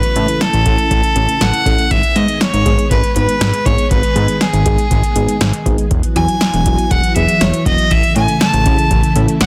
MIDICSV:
0, 0, Header, 1, 6, 480
1, 0, Start_track
1, 0, Tempo, 500000
1, 1833, Time_signature, 4, 2, 24, 8
1, 9082, End_track
2, 0, Start_track
2, 0, Title_t, "Fiddle"
2, 0, Program_c, 0, 110
2, 0, Note_on_c, 0, 71, 93
2, 394, Note_on_c, 0, 69, 92
2, 408, Note_off_c, 0, 71, 0
2, 1354, Note_on_c, 0, 78, 99
2, 1368, Note_off_c, 0, 69, 0
2, 1833, Note_on_c, 0, 76, 99
2, 1847, Note_off_c, 0, 78, 0
2, 2072, Note_on_c, 0, 75, 90
2, 2087, Note_off_c, 0, 76, 0
2, 2312, Note_on_c, 0, 73, 94
2, 2327, Note_off_c, 0, 75, 0
2, 2786, Note_off_c, 0, 73, 0
2, 2792, Note_on_c, 0, 71, 85
2, 3016, Note_off_c, 0, 71, 0
2, 3033, Note_on_c, 0, 71, 92
2, 3512, Note_on_c, 0, 73, 84
2, 3526, Note_off_c, 0, 71, 0
2, 3746, Note_off_c, 0, 73, 0
2, 3752, Note_on_c, 0, 71, 88
2, 4236, Note_on_c, 0, 68, 76
2, 4250, Note_off_c, 0, 71, 0
2, 5434, Note_off_c, 0, 68, 0
2, 5914, Note_on_c, 0, 80, 96
2, 6635, Note_on_c, 0, 78, 91
2, 6650, Note_off_c, 0, 80, 0
2, 6869, Note_off_c, 0, 78, 0
2, 6875, Note_on_c, 0, 76, 87
2, 7113, Note_on_c, 0, 73, 84
2, 7128, Note_off_c, 0, 76, 0
2, 7351, Note_off_c, 0, 73, 0
2, 7356, Note_on_c, 0, 75, 88
2, 7596, Note_on_c, 0, 76, 97
2, 7610, Note_off_c, 0, 75, 0
2, 7830, Note_off_c, 0, 76, 0
2, 7836, Note_on_c, 0, 80, 96
2, 8058, Note_off_c, 0, 80, 0
2, 8077, Note_on_c, 0, 81, 94
2, 8756, Note_off_c, 0, 81, 0
2, 9034, Note_on_c, 0, 78, 105
2, 9082, Note_off_c, 0, 78, 0
2, 9082, End_track
3, 0, Start_track
3, 0, Title_t, "FM electric piano"
3, 0, Program_c, 1, 5
3, 152, Note_on_c, 1, 61, 63
3, 153, Note_on_c, 1, 64, 61
3, 153, Note_on_c, 1, 69, 79
3, 154, Note_on_c, 1, 57, 71
3, 341, Note_off_c, 1, 61, 0
3, 341, Note_off_c, 1, 64, 0
3, 341, Note_off_c, 1, 69, 0
3, 342, Note_off_c, 1, 57, 0
3, 633, Note_on_c, 1, 69, 77
3, 634, Note_on_c, 1, 57, 71
3, 634, Note_on_c, 1, 61, 65
3, 634, Note_on_c, 1, 64, 64
3, 821, Note_off_c, 1, 69, 0
3, 822, Note_off_c, 1, 57, 0
3, 822, Note_off_c, 1, 61, 0
3, 822, Note_off_c, 1, 64, 0
3, 1111, Note_on_c, 1, 61, 78
3, 1111, Note_on_c, 1, 69, 93
3, 1112, Note_on_c, 1, 57, 84
3, 1112, Note_on_c, 1, 64, 77
3, 1300, Note_off_c, 1, 61, 0
3, 1300, Note_off_c, 1, 69, 0
3, 1301, Note_off_c, 1, 57, 0
3, 1301, Note_off_c, 1, 64, 0
3, 1592, Note_on_c, 1, 57, 69
3, 1593, Note_on_c, 1, 61, 67
3, 1593, Note_on_c, 1, 64, 65
3, 1593, Note_on_c, 1, 69, 80
3, 1781, Note_off_c, 1, 57, 0
3, 1781, Note_off_c, 1, 61, 0
3, 1781, Note_off_c, 1, 64, 0
3, 1781, Note_off_c, 1, 69, 0
3, 2073, Note_on_c, 1, 56, 72
3, 2073, Note_on_c, 1, 59, 63
3, 2073, Note_on_c, 1, 63, 66
3, 2073, Note_on_c, 1, 68, 75
3, 2261, Note_off_c, 1, 56, 0
3, 2261, Note_off_c, 1, 59, 0
3, 2261, Note_off_c, 1, 63, 0
3, 2261, Note_off_c, 1, 68, 0
3, 2551, Note_on_c, 1, 59, 64
3, 2551, Note_on_c, 1, 68, 77
3, 2552, Note_on_c, 1, 56, 73
3, 2552, Note_on_c, 1, 63, 63
3, 2740, Note_off_c, 1, 59, 0
3, 2740, Note_off_c, 1, 68, 0
3, 2741, Note_off_c, 1, 56, 0
3, 2741, Note_off_c, 1, 63, 0
3, 3032, Note_on_c, 1, 56, 73
3, 3032, Note_on_c, 1, 59, 64
3, 3032, Note_on_c, 1, 63, 64
3, 3032, Note_on_c, 1, 71, 80
3, 3221, Note_off_c, 1, 56, 0
3, 3221, Note_off_c, 1, 59, 0
3, 3221, Note_off_c, 1, 63, 0
3, 3221, Note_off_c, 1, 71, 0
3, 3510, Note_on_c, 1, 56, 74
3, 3511, Note_on_c, 1, 59, 65
3, 3511, Note_on_c, 1, 68, 78
3, 3512, Note_on_c, 1, 63, 67
3, 3700, Note_off_c, 1, 56, 0
3, 3700, Note_off_c, 1, 59, 0
3, 3701, Note_off_c, 1, 63, 0
3, 3701, Note_off_c, 1, 68, 0
3, 3991, Note_on_c, 1, 56, 69
3, 3991, Note_on_c, 1, 59, 63
3, 3991, Note_on_c, 1, 63, 63
3, 3991, Note_on_c, 1, 68, 76
3, 4180, Note_off_c, 1, 56, 0
3, 4180, Note_off_c, 1, 59, 0
3, 4180, Note_off_c, 1, 63, 0
3, 4180, Note_off_c, 1, 68, 0
3, 4471, Note_on_c, 1, 59, 66
3, 4471, Note_on_c, 1, 63, 65
3, 4472, Note_on_c, 1, 56, 71
3, 4472, Note_on_c, 1, 68, 78
3, 4660, Note_off_c, 1, 59, 0
3, 4661, Note_off_c, 1, 56, 0
3, 4661, Note_off_c, 1, 63, 0
3, 4661, Note_off_c, 1, 68, 0
3, 4952, Note_on_c, 1, 59, 78
3, 4952, Note_on_c, 1, 63, 77
3, 4953, Note_on_c, 1, 56, 83
3, 4953, Note_on_c, 1, 68, 93
3, 5141, Note_off_c, 1, 56, 0
3, 5141, Note_off_c, 1, 59, 0
3, 5141, Note_off_c, 1, 63, 0
3, 5141, Note_off_c, 1, 68, 0
3, 5434, Note_on_c, 1, 56, 85
3, 5434, Note_on_c, 1, 59, 79
3, 5434, Note_on_c, 1, 68, 94
3, 5435, Note_on_c, 1, 63, 78
3, 5622, Note_off_c, 1, 56, 0
3, 5622, Note_off_c, 1, 59, 0
3, 5622, Note_off_c, 1, 63, 0
3, 5622, Note_off_c, 1, 68, 0
3, 5913, Note_on_c, 1, 59, 65
3, 5913, Note_on_c, 1, 64, 63
3, 5914, Note_on_c, 1, 54, 71
3, 5914, Note_on_c, 1, 66, 76
3, 6101, Note_off_c, 1, 59, 0
3, 6101, Note_off_c, 1, 64, 0
3, 6102, Note_off_c, 1, 54, 0
3, 6102, Note_off_c, 1, 66, 0
3, 6393, Note_on_c, 1, 59, 63
3, 6393, Note_on_c, 1, 66, 77
3, 6394, Note_on_c, 1, 54, 70
3, 6394, Note_on_c, 1, 64, 63
3, 6581, Note_off_c, 1, 59, 0
3, 6581, Note_off_c, 1, 66, 0
3, 6582, Note_off_c, 1, 54, 0
3, 6582, Note_off_c, 1, 64, 0
3, 6872, Note_on_c, 1, 59, 65
3, 6873, Note_on_c, 1, 54, 67
3, 6873, Note_on_c, 1, 64, 67
3, 6873, Note_on_c, 1, 68, 76
3, 7061, Note_off_c, 1, 54, 0
3, 7061, Note_off_c, 1, 59, 0
3, 7061, Note_off_c, 1, 64, 0
3, 7061, Note_off_c, 1, 68, 0
3, 7354, Note_on_c, 1, 54, 72
3, 7354, Note_on_c, 1, 66, 78
3, 7355, Note_on_c, 1, 59, 65
3, 7355, Note_on_c, 1, 64, 65
3, 7542, Note_off_c, 1, 54, 0
3, 7542, Note_off_c, 1, 59, 0
3, 7542, Note_off_c, 1, 64, 0
3, 7542, Note_off_c, 1, 66, 0
3, 7833, Note_on_c, 1, 69, 79
3, 7834, Note_on_c, 1, 57, 72
3, 7834, Note_on_c, 1, 61, 61
3, 7834, Note_on_c, 1, 64, 64
3, 8021, Note_off_c, 1, 69, 0
3, 8022, Note_off_c, 1, 57, 0
3, 8022, Note_off_c, 1, 61, 0
3, 8022, Note_off_c, 1, 64, 0
3, 8313, Note_on_c, 1, 57, 70
3, 8313, Note_on_c, 1, 61, 64
3, 8313, Note_on_c, 1, 64, 65
3, 8313, Note_on_c, 1, 68, 79
3, 8501, Note_off_c, 1, 57, 0
3, 8501, Note_off_c, 1, 64, 0
3, 8501, Note_off_c, 1, 68, 0
3, 8502, Note_off_c, 1, 61, 0
3, 8793, Note_on_c, 1, 69, 96
3, 8794, Note_on_c, 1, 57, 85
3, 8794, Note_on_c, 1, 61, 78
3, 8794, Note_on_c, 1, 64, 79
3, 8981, Note_off_c, 1, 69, 0
3, 8982, Note_off_c, 1, 57, 0
3, 8982, Note_off_c, 1, 61, 0
3, 8982, Note_off_c, 1, 64, 0
3, 9082, End_track
4, 0, Start_track
4, 0, Title_t, "String machine"
4, 0, Program_c, 2, 50
4, 0, Note_on_c, 2, 49, 83
4, 0, Note_on_c, 2, 52, 78
4, 0, Note_on_c, 2, 57, 77
4, 0, Note_on_c, 2, 64, 90
4, 1813, Note_off_c, 2, 49, 0
4, 1813, Note_off_c, 2, 52, 0
4, 1813, Note_off_c, 2, 57, 0
4, 1813, Note_off_c, 2, 64, 0
4, 1832, Note_on_c, 2, 51, 82
4, 1832, Note_on_c, 2, 68, 89
4, 1833, Note_on_c, 2, 56, 76
4, 1833, Note_on_c, 2, 59, 75
4, 5634, Note_off_c, 2, 51, 0
4, 5634, Note_off_c, 2, 56, 0
4, 5634, Note_off_c, 2, 68, 0
4, 5675, Note_on_c, 2, 54, 75
4, 5677, Note_on_c, 2, 66, 89
4, 5678, Note_on_c, 2, 52, 83
4, 7555, Note_off_c, 2, 59, 0
4, 7575, Note_off_c, 2, 54, 0
4, 7576, Note_off_c, 2, 66, 0
4, 7592, Note_on_c, 2, 64, 91
4, 7593, Note_on_c, 2, 49, 81
4, 7593, Note_on_c, 2, 57, 76
4, 9082, Note_off_c, 2, 49, 0
4, 9082, Note_off_c, 2, 52, 0
4, 9082, Note_off_c, 2, 57, 0
4, 9082, Note_off_c, 2, 64, 0
4, 9082, End_track
5, 0, Start_track
5, 0, Title_t, "Analog synth bass"
5, 0, Program_c, 3, 38
5, 153, Note_on_c, 3, 45, 100
5, 262, Note_off_c, 3, 45, 0
5, 513, Note_on_c, 3, 33, 89
5, 622, Note_off_c, 3, 33, 0
5, 633, Note_on_c, 3, 33, 101
5, 742, Note_off_c, 3, 33, 0
5, 872, Note_on_c, 3, 33, 107
5, 982, Note_off_c, 3, 33, 0
5, 1112, Note_on_c, 3, 33, 97
5, 1222, Note_off_c, 3, 33, 0
5, 1351, Note_on_c, 3, 33, 94
5, 1461, Note_off_c, 3, 33, 0
5, 1591, Note_on_c, 3, 33, 96
5, 1701, Note_off_c, 3, 33, 0
5, 1833, Note_on_c, 3, 32, 109
5, 1942, Note_off_c, 3, 32, 0
5, 2073, Note_on_c, 3, 44, 93
5, 2182, Note_off_c, 3, 44, 0
5, 2433, Note_on_c, 3, 32, 93
5, 2542, Note_off_c, 3, 32, 0
5, 2552, Note_on_c, 3, 32, 97
5, 2662, Note_off_c, 3, 32, 0
5, 2793, Note_on_c, 3, 32, 110
5, 2902, Note_off_c, 3, 32, 0
5, 3033, Note_on_c, 3, 32, 96
5, 3142, Note_off_c, 3, 32, 0
5, 3271, Note_on_c, 3, 32, 98
5, 3381, Note_off_c, 3, 32, 0
5, 3511, Note_on_c, 3, 32, 101
5, 3621, Note_off_c, 3, 32, 0
5, 3752, Note_on_c, 3, 32, 110
5, 3862, Note_off_c, 3, 32, 0
5, 3993, Note_on_c, 3, 44, 102
5, 4102, Note_off_c, 3, 44, 0
5, 4352, Note_on_c, 3, 32, 99
5, 4462, Note_off_c, 3, 32, 0
5, 4472, Note_on_c, 3, 32, 98
5, 4582, Note_off_c, 3, 32, 0
5, 4713, Note_on_c, 3, 32, 106
5, 4822, Note_off_c, 3, 32, 0
5, 4952, Note_on_c, 3, 32, 94
5, 5062, Note_off_c, 3, 32, 0
5, 5193, Note_on_c, 3, 32, 102
5, 5302, Note_off_c, 3, 32, 0
5, 5431, Note_on_c, 3, 32, 103
5, 5541, Note_off_c, 3, 32, 0
5, 5674, Note_on_c, 3, 28, 104
5, 5783, Note_off_c, 3, 28, 0
5, 5913, Note_on_c, 3, 40, 107
5, 6022, Note_off_c, 3, 40, 0
5, 6273, Note_on_c, 3, 28, 99
5, 6382, Note_off_c, 3, 28, 0
5, 6394, Note_on_c, 3, 28, 101
5, 6503, Note_off_c, 3, 28, 0
5, 6633, Note_on_c, 3, 28, 103
5, 6742, Note_off_c, 3, 28, 0
5, 6874, Note_on_c, 3, 28, 101
5, 6983, Note_off_c, 3, 28, 0
5, 7114, Note_on_c, 3, 28, 101
5, 7223, Note_off_c, 3, 28, 0
5, 7352, Note_on_c, 3, 28, 92
5, 7462, Note_off_c, 3, 28, 0
5, 7595, Note_on_c, 3, 33, 112
5, 7703, Note_off_c, 3, 33, 0
5, 7834, Note_on_c, 3, 45, 102
5, 7943, Note_off_c, 3, 45, 0
5, 8194, Note_on_c, 3, 33, 91
5, 8303, Note_off_c, 3, 33, 0
5, 8313, Note_on_c, 3, 33, 107
5, 8422, Note_off_c, 3, 33, 0
5, 8553, Note_on_c, 3, 33, 108
5, 8662, Note_off_c, 3, 33, 0
5, 8792, Note_on_c, 3, 33, 98
5, 8902, Note_off_c, 3, 33, 0
5, 9033, Note_on_c, 3, 33, 96
5, 9082, Note_off_c, 3, 33, 0
5, 9082, End_track
6, 0, Start_track
6, 0, Title_t, "Drums"
6, 30, Note_on_c, 9, 42, 58
6, 126, Note_off_c, 9, 42, 0
6, 151, Note_on_c, 9, 42, 64
6, 247, Note_off_c, 9, 42, 0
6, 272, Note_on_c, 9, 42, 46
6, 368, Note_off_c, 9, 42, 0
6, 393, Note_on_c, 9, 38, 108
6, 394, Note_on_c, 9, 42, 62
6, 489, Note_off_c, 9, 38, 0
6, 490, Note_off_c, 9, 42, 0
6, 513, Note_on_c, 9, 42, 43
6, 609, Note_off_c, 9, 42, 0
6, 631, Note_on_c, 9, 42, 70
6, 632, Note_on_c, 9, 36, 84
6, 727, Note_off_c, 9, 42, 0
6, 728, Note_off_c, 9, 36, 0
6, 753, Note_on_c, 9, 42, 48
6, 849, Note_off_c, 9, 42, 0
6, 872, Note_on_c, 9, 36, 89
6, 873, Note_on_c, 9, 42, 76
6, 968, Note_off_c, 9, 36, 0
6, 969, Note_off_c, 9, 42, 0
6, 994, Note_on_c, 9, 42, 53
6, 1090, Note_off_c, 9, 42, 0
6, 1111, Note_on_c, 9, 42, 77
6, 1207, Note_off_c, 9, 42, 0
6, 1235, Note_on_c, 9, 42, 50
6, 1331, Note_off_c, 9, 42, 0
6, 1354, Note_on_c, 9, 42, 75
6, 1355, Note_on_c, 9, 38, 105
6, 1450, Note_off_c, 9, 42, 0
6, 1451, Note_off_c, 9, 38, 0
6, 1474, Note_on_c, 9, 42, 58
6, 1570, Note_off_c, 9, 42, 0
6, 1591, Note_on_c, 9, 36, 96
6, 1596, Note_on_c, 9, 42, 80
6, 1687, Note_off_c, 9, 36, 0
6, 1692, Note_off_c, 9, 42, 0
6, 1713, Note_on_c, 9, 42, 47
6, 1809, Note_off_c, 9, 42, 0
6, 1833, Note_on_c, 9, 36, 111
6, 1833, Note_on_c, 9, 42, 70
6, 1929, Note_off_c, 9, 36, 0
6, 1929, Note_off_c, 9, 42, 0
6, 1952, Note_on_c, 9, 42, 58
6, 2048, Note_off_c, 9, 42, 0
6, 2072, Note_on_c, 9, 42, 63
6, 2168, Note_off_c, 9, 42, 0
6, 2192, Note_on_c, 9, 42, 48
6, 2288, Note_off_c, 9, 42, 0
6, 2312, Note_on_c, 9, 38, 107
6, 2313, Note_on_c, 9, 42, 62
6, 2408, Note_off_c, 9, 38, 0
6, 2409, Note_off_c, 9, 42, 0
6, 2435, Note_on_c, 9, 42, 44
6, 2531, Note_off_c, 9, 42, 0
6, 2553, Note_on_c, 9, 36, 85
6, 2553, Note_on_c, 9, 42, 69
6, 2649, Note_off_c, 9, 36, 0
6, 2649, Note_off_c, 9, 42, 0
6, 2675, Note_on_c, 9, 42, 50
6, 2771, Note_off_c, 9, 42, 0
6, 2793, Note_on_c, 9, 36, 93
6, 2794, Note_on_c, 9, 42, 75
6, 2889, Note_off_c, 9, 36, 0
6, 2890, Note_off_c, 9, 42, 0
6, 2914, Note_on_c, 9, 42, 54
6, 3010, Note_off_c, 9, 42, 0
6, 3032, Note_on_c, 9, 42, 75
6, 3128, Note_off_c, 9, 42, 0
6, 3155, Note_on_c, 9, 42, 47
6, 3251, Note_off_c, 9, 42, 0
6, 3274, Note_on_c, 9, 42, 76
6, 3275, Note_on_c, 9, 38, 102
6, 3370, Note_off_c, 9, 42, 0
6, 3371, Note_off_c, 9, 38, 0
6, 3394, Note_on_c, 9, 42, 56
6, 3490, Note_off_c, 9, 42, 0
6, 3511, Note_on_c, 9, 36, 95
6, 3515, Note_on_c, 9, 42, 78
6, 3607, Note_off_c, 9, 36, 0
6, 3611, Note_off_c, 9, 42, 0
6, 3632, Note_on_c, 9, 42, 47
6, 3728, Note_off_c, 9, 42, 0
6, 3753, Note_on_c, 9, 36, 114
6, 3753, Note_on_c, 9, 42, 69
6, 3849, Note_off_c, 9, 36, 0
6, 3849, Note_off_c, 9, 42, 0
6, 3871, Note_on_c, 9, 42, 58
6, 3967, Note_off_c, 9, 42, 0
6, 3992, Note_on_c, 9, 42, 64
6, 4088, Note_off_c, 9, 42, 0
6, 4111, Note_on_c, 9, 42, 47
6, 4207, Note_off_c, 9, 42, 0
6, 4232, Note_on_c, 9, 38, 106
6, 4233, Note_on_c, 9, 42, 66
6, 4328, Note_off_c, 9, 38, 0
6, 4329, Note_off_c, 9, 42, 0
6, 4354, Note_on_c, 9, 42, 43
6, 4450, Note_off_c, 9, 42, 0
6, 4471, Note_on_c, 9, 42, 70
6, 4472, Note_on_c, 9, 36, 86
6, 4567, Note_off_c, 9, 42, 0
6, 4568, Note_off_c, 9, 36, 0
6, 4593, Note_on_c, 9, 42, 49
6, 4689, Note_off_c, 9, 42, 0
6, 4712, Note_on_c, 9, 36, 93
6, 4713, Note_on_c, 9, 42, 73
6, 4808, Note_off_c, 9, 36, 0
6, 4809, Note_off_c, 9, 42, 0
6, 4834, Note_on_c, 9, 42, 55
6, 4930, Note_off_c, 9, 42, 0
6, 4951, Note_on_c, 9, 42, 80
6, 5047, Note_off_c, 9, 42, 0
6, 5074, Note_on_c, 9, 42, 50
6, 5170, Note_off_c, 9, 42, 0
6, 5192, Note_on_c, 9, 42, 72
6, 5193, Note_on_c, 9, 38, 102
6, 5288, Note_off_c, 9, 42, 0
6, 5289, Note_off_c, 9, 38, 0
6, 5313, Note_on_c, 9, 42, 57
6, 5409, Note_off_c, 9, 42, 0
6, 5432, Note_on_c, 9, 36, 91
6, 5436, Note_on_c, 9, 42, 80
6, 5528, Note_off_c, 9, 36, 0
6, 5532, Note_off_c, 9, 42, 0
6, 5551, Note_on_c, 9, 42, 47
6, 5647, Note_off_c, 9, 42, 0
6, 5672, Note_on_c, 9, 42, 68
6, 5673, Note_on_c, 9, 36, 112
6, 5768, Note_off_c, 9, 42, 0
6, 5769, Note_off_c, 9, 36, 0
6, 5792, Note_on_c, 9, 42, 58
6, 5888, Note_off_c, 9, 42, 0
6, 5913, Note_on_c, 9, 42, 65
6, 6009, Note_off_c, 9, 42, 0
6, 6033, Note_on_c, 9, 42, 48
6, 6129, Note_off_c, 9, 42, 0
6, 6152, Note_on_c, 9, 38, 103
6, 6153, Note_on_c, 9, 42, 66
6, 6248, Note_off_c, 9, 38, 0
6, 6249, Note_off_c, 9, 42, 0
6, 6274, Note_on_c, 9, 42, 44
6, 6370, Note_off_c, 9, 42, 0
6, 6391, Note_on_c, 9, 42, 70
6, 6393, Note_on_c, 9, 36, 82
6, 6487, Note_off_c, 9, 42, 0
6, 6489, Note_off_c, 9, 36, 0
6, 6514, Note_on_c, 9, 42, 49
6, 6610, Note_off_c, 9, 42, 0
6, 6634, Note_on_c, 9, 36, 93
6, 6634, Note_on_c, 9, 42, 72
6, 6730, Note_off_c, 9, 36, 0
6, 6730, Note_off_c, 9, 42, 0
6, 6754, Note_on_c, 9, 42, 54
6, 6850, Note_off_c, 9, 42, 0
6, 6871, Note_on_c, 9, 42, 75
6, 6967, Note_off_c, 9, 42, 0
6, 6994, Note_on_c, 9, 42, 50
6, 7090, Note_off_c, 9, 42, 0
6, 7113, Note_on_c, 9, 42, 73
6, 7115, Note_on_c, 9, 38, 103
6, 7209, Note_off_c, 9, 42, 0
6, 7211, Note_off_c, 9, 38, 0
6, 7234, Note_on_c, 9, 42, 55
6, 7330, Note_off_c, 9, 42, 0
6, 7352, Note_on_c, 9, 36, 94
6, 7356, Note_on_c, 9, 42, 81
6, 7448, Note_off_c, 9, 36, 0
6, 7452, Note_off_c, 9, 42, 0
6, 7471, Note_on_c, 9, 42, 47
6, 7567, Note_off_c, 9, 42, 0
6, 7594, Note_on_c, 9, 36, 111
6, 7594, Note_on_c, 9, 42, 69
6, 7690, Note_off_c, 9, 36, 0
6, 7690, Note_off_c, 9, 42, 0
6, 7713, Note_on_c, 9, 42, 58
6, 7809, Note_off_c, 9, 42, 0
6, 7831, Note_on_c, 9, 42, 62
6, 7927, Note_off_c, 9, 42, 0
6, 7952, Note_on_c, 9, 42, 47
6, 8048, Note_off_c, 9, 42, 0
6, 8072, Note_on_c, 9, 38, 110
6, 8073, Note_on_c, 9, 42, 64
6, 8168, Note_off_c, 9, 38, 0
6, 8169, Note_off_c, 9, 42, 0
6, 8194, Note_on_c, 9, 42, 44
6, 8290, Note_off_c, 9, 42, 0
6, 8311, Note_on_c, 9, 42, 70
6, 8313, Note_on_c, 9, 36, 86
6, 8407, Note_off_c, 9, 42, 0
6, 8409, Note_off_c, 9, 36, 0
6, 8433, Note_on_c, 9, 42, 51
6, 8529, Note_off_c, 9, 42, 0
6, 8552, Note_on_c, 9, 42, 77
6, 8553, Note_on_c, 9, 36, 94
6, 8648, Note_off_c, 9, 42, 0
6, 8649, Note_off_c, 9, 36, 0
6, 8673, Note_on_c, 9, 42, 56
6, 8769, Note_off_c, 9, 42, 0
6, 8790, Note_on_c, 9, 42, 75
6, 8886, Note_off_c, 9, 42, 0
6, 8913, Note_on_c, 9, 42, 48
6, 9009, Note_off_c, 9, 42, 0
6, 9030, Note_on_c, 9, 42, 73
6, 9031, Note_on_c, 9, 38, 105
6, 9082, Note_off_c, 9, 38, 0
6, 9082, Note_off_c, 9, 42, 0
6, 9082, End_track
0, 0, End_of_file